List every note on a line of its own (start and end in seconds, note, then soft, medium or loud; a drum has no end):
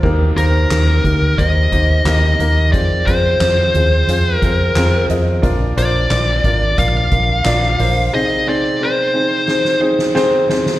0.03 0.31 D#2 medium
0.03 1.01 D#3 medium
0.03 0.33 A#3 medium
0.03 0.33 D#4 medium
0.03 0.33 G4 medium
0.03 0.34 A#4 loud
0.03 kick medium
0.03 crash medium
0.36 0.64 D#2 medium
0.36 0.67 A#3 medium
0.36 0.68 D#4 medium
0.36 0.68 G4 medium
0.36 1.42 A#4 medium
0.36 0.68 C5 medium
0.36 closed hi-hat medium
0.70 0.98 D#2 medium
0.70 1.01 A#3 medium
0.70 1.01 D#4 soft
0.70 1.01 G4 medium
0.70 1.01 A#4 medium
0.70 snare loud
0.70 clap medium
0.70 closed hi-hat medium
1.04 1.32 D2 medium
1.04 1.34 A#3 medium
1.04 1.35 D#4 medium
1.04 1.35 G4 medium
1.04 1.35 A#4 medium
1.04 kick medium
1.04 closed hi-hat medium
1.38 1.66 D#2 medium
1.38 1.69 A#3 medium
1.38 1.69 D#4 medium
1.38 1.69 G4 medium
1.38 1.69 C5 medium
1.38 2.72 D#5 loud
1.38 kick medium
1.38 closed hi-hat medium
1.72 2.00 D#2 medium
1.72 2.02 A#3 medium
1.72 2.03 D#4 medium
1.72 2.03 G4 medium
1.72 2.03 C5 medium
1.72 kick medium
1.72 closed hi-hat medium
2.05 2.33 D#2 loud
2.05 2.36 A#3 medium
2.05 2.36 D#4 medium
2.05 2.36 G4 medium
2.05 2.36 A#4 medium
2.05 snare medium
2.05 clap medium
2.05 closed hi-hat medium
2.23 snare soft
2.39 2.74 D#2 medium
2.39 2.70 A#3 medium
2.39 2.70 D#4 medium
2.39 2.70 G4 medium
2.39 2.70 A#4 medium
2.39 closed hi-hat medium
2.72 3.01 F2 medium
2.72 3.03 C4 medium
2.72 3.03 F4 medium
2.72 3.03 G#4 medium
2.72 3.04 C5 medium
2.72 3.04 D5 medium
2.72 kick medium
2.72 closed hi-hat medium
3.06 3.35 F2 medium
3.06 3.37 C4 medium
3.06 3.37 F4 medium
3.06 3.38 G#4 medium
3.06 4.35 C5 medium
3.06 3.38 C5 medium
3.06 kick medium
3.06 closed hi-hat medium
3.40 3.68 F2 medium
3.40 3.71 C4 medium
3.40 3.71 F4 medium
3.40 3.71 G#4 medium
3.40 3.71 C5 medium
3.40 snare loud
3.40 clap medium
3.40 closed hi-hat medium
3.74 4.02 D#2 medium
3.74 4.05 C4 medium
3.74 4.05 F4 medium
3.74 4.05 G#4 medium
3.74 4.05 C5 medium
3.74 closed hi-hat soft
4.08 4.36 F2 loud
4.08 4.39 C4 medium
4.08 4.39 F4 medium
4.08 4.39 G#4 medium
4.08 4.39 C5 medium
4.08 closed hi-hat medium
4.35 5.05 A#4 medium
4.42 4.70 F2 medium
4.42 4.73 C4 medium
4.42 4.73 F4 medium
4.42 4.73 G#4 medium
4.42 4.73 C5 medium
4.42 kick medium
4.42 closed hi-hat medium
4.76 5.03 F2 loud
4.76 5.06 C4 loud
4.76 5.06 F4 medium
4.76 5.06 G#4 medium
4.76 5.06 A#4 loud
4.76 snare loud
4.76 clap medium
4.76 closed hi-hat medium
5.09 5.37 F2 medium
5.09 5.40 C4 medium
5.09 5.40 F4 medium
5.09 5.40 G#4 medium
5.09 5.40 D#5 medium
5.09 closed hi-hat medium
5.42 5.71 A#1 loud
5.42 6.40 A#2 medium
5.42 5.73 D4 medium
5.42 5.73 F4 medium
5.42 5.73 A#4 medium
5.42 5.73 D5 loud
5.42 kick loud
5.42 closed hi-hat medium
5.76 6.05 A#1 medium
5.76 6.07 D4 medium
5.76 6.07 F4 medium
5.76 6.07 A#4 medium
5.76 6.07 C5 medium
5.76 6.79 D5 medium
5.76 closed hi-hat medium
6.10 6.38 A#1 loud
6.10 6.41 D4 medium
6.10 6.41 F4 medium
6.10 6.41 A#4 medium
6.10 6.41 D5 medium
6.10 snare loud
6.10 clap medium
6.10 closed hi-hat medium
6.44 6.72 G#1 medium
6.44 6.75 D4 medium
6.44 6.75 F4 medium
6.44 6.75 A#4 medium
6.44 6.75 D5 medium
6.44 kick medium
6.44 closed hi-hat medium
6.78 7.06 A#1 loud
6.78 7.08 D4 medium
6.78 7.08 F4 medium
6.78 7.09 A#4 medium
6.78 7.09 D5 medium
6.78 8.14 F5 medium
6.78 kick medium
6.78 closed hi-hat medium
7.11 7.40 A#1 medium
7.11 7.42 D4 medium
7.11 7.42 F4 medium
7.11 7.42 A#4 medium
7.11 7.42 F5 medium
7.11 kick medium
7.11 closed hi-hat medium
7.45 7.74 A#1 loud
7.45 7.76 D4 medium
7.45 7.76 F4 medium
7.45 7.76 A#4 medium
7.45 7.76 D5 loud
7.45 snare medium
7.45 clap medium
7.45 closed hi-hat medium
7.62 snare soft
7.79 8.07 A#1 medium
7.79 8.10 D4 medium
7.79 8.10 F4 medium
7.79 8.10 A#4 medium
7.79 8.10 C5 medium
7.79 open hi-hat medium
8.13 9.11 C3 medium
8.13 8.43 C4 medium
8.13 8.44 D#4 medium
8.13 8.43 G#4 medium
8.13 8.44 C5 medium
8.13 8.45 D#5 loud
8.47 8.77 C4 medium
8.47 8.77 D#4 medium
8.47 8.77 G#4 medium
8.47 8.78 C5 medium
8.47 8.83 D5 medium
8.81 9.11 C4 medium
8.81 9.11 D#4 medium
8.81 9.11 G#4 medium
8.81 9.11 C5 medium
8.81 9.79 C5 medium
9.14 9.44 C4 medium
9.14 9.45 D#4 medium
9.14 9.45 G#4 medium
9.14 9.45 C5 medium
9.47 9.78 C4 medium
9.47 9.78 D#4 medium
9.47 9.78 G#4 medium
9.47 9.78 C5 medium
9.47 snare medium
9.65 snare soft
9.81 10.12 C4 medium
9.81 10.12 D#4 medium
9.81 10.12 G#4 medium
9.81 10.12 C5 loud
9.99 snare medium
10.15 10.45 C4 loud
10.15 10.46 D#4 loud
10.15 10.46 G#4 loud
10.15 10.46 C5 loud
10.15 snare medium
10.49 10.79 C4 medium
10.49 10.79 D#4 medium
10.49 10.79 G#4 medium
10.49 10.79 C5 medium
10.49 snare medium
10.66 snare medium